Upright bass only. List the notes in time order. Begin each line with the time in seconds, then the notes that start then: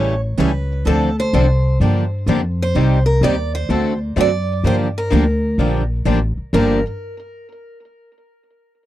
Already playing: A1
0.38 C#2
0.86 D2
1.33 C2
1.80 G2
2.26 F2
2.75 C2
3.21 D#2
3.69 D2
4.16 F#2
4.64 G2
5.12 D2
5.58 A#1
6.05 A1
6.37 muted upright bass stroke
6.53 G1